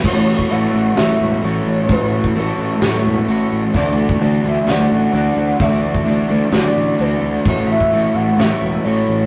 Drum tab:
CC |x---------------|----------------|----------------|----------------|
HH |----o---o---o---|o---o---o---o---|o---o---o---o---|o---o---o---o---|
SD |--------o-------|--------o-------|--------o-------|--------o-------|
BD |o--o------------|o--o------------|o--o------------|o--o------------|

CC |----------------|
HH |o---o---o---o---|
SD |--------o-------|
BD |o--o------------|